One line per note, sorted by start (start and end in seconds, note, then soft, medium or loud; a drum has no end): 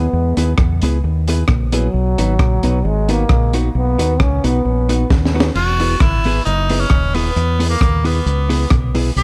0.00 0.37 B3 medium
0.13 0.34 E2 loud
0.37 0.55 D#2 medium
0.37 0.51 B3 medium
0.37 0.52 E4 medium
0.37 0.52 G#4 loud
0.37 0.52 B4 loud
0.37 closed hi-hat medium
0.58 0.79 E2 medium
0.58 kick loud
0.58 cross-stick loud
0.82 1.00 C#2 medium
0.82 0.97 B3 medium
0.82 0.97 E4 medium
0.82 0.97 G#4 medium
0.82 0.97 B4 medium
0.82 closed hi-hat medium
1.04 1.42 D#2 loud
1.04 muted hollow-body jazz guitar stroke soft
1.28 1.42 B3 medium
1.28 1.42 E4 medium
1.28 1.43 G#4 medium
1.28 1.43 B4 loud
1.28 closed hi-hat loud
1.48 1.87 A#1 loud
1.48 kick loud
1.48 cross-stick loud
1.72 2.88 F#3 medium
1.72 1.87 B3 medium
1.72 1.87 E4 medium
1.72 1.88 G#4 loud
1.72 1.88 B4 medium
1.72 closed hi-hat loud
1.94 2.14 B1 loud
2.18 2.36 G#1 medium
2.18 2.33 B3 medium
2.18 2.33 D#4 medium
2.18 2.33 F#4 loud
2.18 2.33 B4 loud
2.18 closed hi-hat medium
2.39 2.60 A#1 medium
2.39 kick loud
2.39 cross-stick loud
2.63 2.81 B1 medium
2.63 2.78 B3 loud
2.63 2.78 D#4 loud
2.63 2.78 F#4 medium
2.63 2.78 B4 loud
2.63 closed hi-hat medium
2.84 3.23 G#1 loud
2.84 3.13 G#3 loud
2.84 muted hollow-body jazz guitar stroke medium
3.08 3.55 A#3 loud
3.08 3.23 B3 medium
3.08 3.23 D#4 medium
3.08 3.23 F#4 medium
3.08 3.23 B4 loud
3.08 closed hi-hat medium
3.29 3.68 A#1 loud
3.29 kick loud
3.29 cross-stick loud
3.53 3.68 B3 medium
3.53 3.68 D#4 medium
3.53 3.68 F#4 loud
3.53 3.69 B4 loud
3.53 closed hi-hat medium
3.75 3.95 B1 loud
3.75 4.23 B3 loud
3.98 4.13 B3 medium
3.98 4.13 D#4 medium
3.98 4.13 F#4 medium
3.98 4.14 B4 loud
3.98 closed hi-hat loud
4.20 4.41 C#2 medium
4.20 4.46 C#4 loud
4.20 kick loud
4.20 cross-stick loud
4.44 4.62 B1 medium
4.44 4.58 B3 medium
4.44 5.11 B3 medium
4.44 4.58 D#4 loud
4.44 4.59 F#4 medium
4.44 4.59 B4 medium
4.44 closed hi-hat medium
4.65 5.04 A#1 medium
4.65 muted hollow-body jazz guitar stroke soft
4.89 5.03 B3 medium
4.89 5.04 D#4 medium
4.89 5.04 F#4 medium
4.89 5.04 B4 medium
4.89 closed hi-hat medium
5.10 5.49 D#2 medium
5.10 kick loud
5.10 snare medium
5.25 snare medium
5.35 5.49 B3 medium
5.35 5.49 D#4 medium
5.35 5.49 F#4 medium
5.35 5.49 B4 loud
5.40 snare loud
5.55 5.94 E1 loud
5.55 6.02 F#4 loud
5.55 crash medium
5.80 5.94 B3 medium
5.80 5.94 E4 loud
5.80 5.94 G#4 medium
5.80 5.94 B4 medium
5.80 open hi-hat loud
6.00 6.39 G#1 medium
6.00 6.45 E4 loud
6.00 kick loud
6.00 cross-stick loud
6.00 hi-hat pedal medium
6.24 6.39 B3 medium
6.24 6.40 E4 medium
6.24 6.40 G#4 loud
6.24 6.40 B4 loud
6.24 open hi-hat medium
6.45 6.84 F#1 loud
6.45 6.82 D#4 medium
6.45 muted hollow-body jazz guitar stroke soft
6.45 hi-hat pedal medium
6.69 6.84 B3 medium
6.69 6.84 E4 medium
6.69 6.85 G#4 medium
6.69 6.85 B4 loud
6.69 open hi-hat medium
6.80 7.16 C#4 medium
6.90 7.29 D#1 medium
6.90 kick loud
6.90 cross-stick loud
6.90 hi-hat pedal medium
7.14 7.69 B3 medium
7.14 7.29 B3 medium
7.14 7.29 E4 medium
7.14 7.29 G#4 medium
7.14 7.30 B4 medium
7.14 open hi-hat medium
7.36 7.74 E2 loud
7.36 hi-hat pedal medium
7.59 7.74 B3 medium
7.59 7.74 E4 medium
7.59 7.74 G#4 medium
7.59 7.75 B4 medium
7.59 open hi-hat loud
7.70 8.07 A#3 medium
7.81 8.20 D#2 medium
7.81 kick loud
7.81 cross-stick loud
7.81 hi-hat pedal medium
8.04 8.19 B3 medium
8.04 8.72 B3 medium
8.04 8.19 E4 medium
8.04 8.19 G#4 medium
8.04 8.20 B4 medium
8.04 open hi-hat medium
8.26 8.64 C#2 loud
8.26 muted hollow-body jazz guitar stroke medium
8.26 hi-hat pedal medium
8.49 8.64 B3 loud
8.49 8.64 E4 loud
8.49 8.64 G#4 loud
8.49 8.64 B4 loud
8.49 open hi-hat medium
8.70 9.10 B1 medium
8.70 kick loud
8.70 cross-stick loud
8.70 hi-hat pedal medium
8.95 9.09 B3 medium
8.95 9.09 E4 loud
8.95 9.10 G#4 loud
8.95 9.10 B4 loud
8.95 open hi-hat medium
9.16 9.23 B1 loud
9.16 9.23 G#4 loud
9.16 hi-hat pedal medium